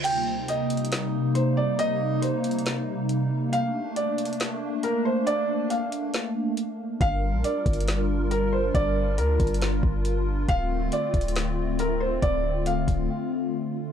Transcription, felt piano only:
\new Staff \with { instrumentName = "Felt piano" } { \time 4/4 \key c \dorian \tempo 4 = 138 g''4 ees''2 c''8 d''8 | ees''4 c''2 r4 | f''4 d''2 bes'8 c''8 | d''4 f''2. |
f''4 d''2 bes'8 c''8 | d''4 bes'2 r4 | f''4 d''2 bes'8 c''8 | d''4 f''2. | }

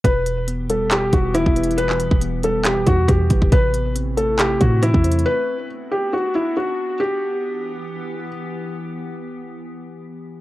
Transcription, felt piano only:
\new Staff \with { instrumentName = "Felt piano" } { \time 4/4 \key e \minor \tempo 4 = 138 b'4 r8 a'8 g'8 fis'8 e'4 | b'4 r8 a'8 g'8 fis'8 g'4 | b'4 r8 a'8 g'8 fis'8 e'4 | b'4 r8 g'8 fis'8 e'8 fis'4 |
g'2. r4 | r1 | }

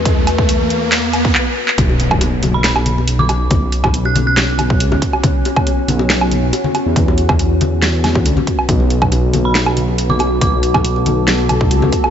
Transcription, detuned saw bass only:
\new Staff \with { instrumentName = "Detuned saw bass" } { \clef bass \time 4/4 \key b \minor \tempo 4 = 139 e,2. r4 | b,,2.~ b,,8 b,,8 | b,,4. b,,4. cis,8 r8 | r4. b,,4. r8. e,16~ |
e,2. d,16 r8. | b,,2.~ b,,8 b,,8 | b,,4. b,,4. cis,8 r8 | }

